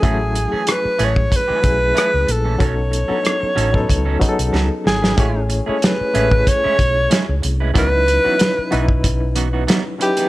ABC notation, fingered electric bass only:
X:1
M:4/4
L:1/16
Q:"Swing 16ths" 1/4=93
K:Alyd
V:1 name="Fingered electric bass" clef=bass
A,,,3 z3 A,,,2 z2 B,,,2 z C,, ^A,,,2 | B,,,3 z3 A,,,2 C,,2 z B,,, C,, z G,,,2 | A,,,3 z3 A,,,2 z2 B,,,2 z C,, ^B,,,2 | C,,3 z3 B,,,6 z4 |]